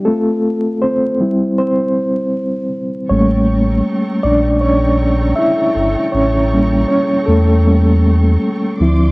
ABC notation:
X:1
M:4/4
L:1/16
Q:"Swing 16ths" 1/4=79
K:Aphr
V:1 name="String section"
z16 | [Agb^c']16- | [Agb^c']12- [Agbc']2 [F,d=c'd']2 |]
V:2 name="Reed electric piano"
A4 [Cc]4 [Cc]6 z2 | [^C^c]6 [Dd]2 [Cc]4 [Ee]4 | [^C^c]4 [Cc]2 [A,A]8 z2 |]
V:3 name="Reed electric piano"
[A,CF]6 [G,CE]8- [G,CE]2 | [G,A,B,]16 | z2 [G,B,^C]6 [G,B,C]2 z4 [F,=CE]2 |]
V:4 name="Sub bass" clef=bass
z16 | A,,,4 z2 B,,,6 z2 G,,, z | A,,,4 z2 E,,6 z2 D,,2 |]